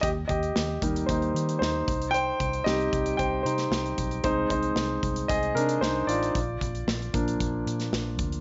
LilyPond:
<<
  \new Staff \with { instrumentName = "Grand piano" } { \time 4/4 \key c \minor \tempo 4 = 114 <g' ees''>8 <g' ees''>4. <ees' c''>4 <ees' c''>4 | <c'' g''>4 <g' ees''>4 <c'' g''>8 <ees' c''>4 r8 | c''8 <ees' c''>4. <aes' ees''>8 <d' bes'>8 <ees' c''>8 <f' d''>8~ | <f' d''>2. r4 | }
  \new Staff \with { instrumentName = "Grand piano" } { \time 4/4 \key c \minor r4. <g bes ees'>8 r2 | r4 <g c' ees'>4. r4. | <aes c' ees'>8 r2. r8 | r4. <f bes d'>4. r4 | }
  \new Staff \with { instrumentName = "Fingered electric bass" } { \clef bass \time 4/4 \key c \minor ees,8 ees,8 ees,8 ees,8 ees,8 ees8 ees,8 c,8~ | c,8 c,8 c,8 c,8 c,8 c8 c,8 ces,8 | c,8 c,8 c,8 c,8 c,8 c8 c,8 a,,8 | bes,,8 bes,,8 bes,,8 bes,,8 bes,,8 bes,8 bes,,8 d,8 | }
  \new DrumStaff \with { instrumentName = "Drums" } \drummode { \time 4/4 <hh bd>8 <hh bd>16 hh16 sn8 <hh bd>16 hh16 <hh bd>16 hh16 hh16 hh16 sn8 <hh bd>16 hh16 | hh8 <hh bd>16 hh16 sn16 hh16 <hh bd>16 hh16 <hh bd>8 hh16 <hh sn>16 sn16 hh16 <hh bd>16 hh16 | <hh bd>8 <hh bd>16 hh16 sn8 <hh bd>16 hh16 <hh bd>16 hh16 hh16 hh16 sn8 hh16 hh16 | <hh bd>8 <hh bd>16 hh16 sn16 hh16 <hh bd>16 hh16 <hh bd>8 hh16 <hh sn>16 sn8 <hh bd>16 hh16 | }
>>